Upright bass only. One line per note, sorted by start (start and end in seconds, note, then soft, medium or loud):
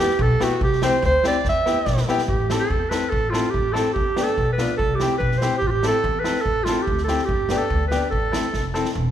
0.19 0.32 B1 loud
0.61 0.86 C2 loud
1.02 1.15 D2 loud
1.45 1.70 E2 medium
1.86 1.99 B1 loud
2.28 2.53 A1 loud
2.70 2.96 E2 loud
3.12 3.37 A1 loud
3.54 3.79 A1 medium
3.96 4.21 G1 medium
4.38 4.63 B1 loud
4.79 5.04 C2 loud
5.20 5.46 B1 loud
5.61 5.87 A1 medium
6.04 6.29 E2 loud
6.46 6.71 A1 medium
6.87 7.13 D2 loud
7.29 7.54 G1 loud
7.70 7.96 D2 loud
8.12 8.37 A1 medium
8.54 8.79 F1 medium
8.95 9.08 E1 loud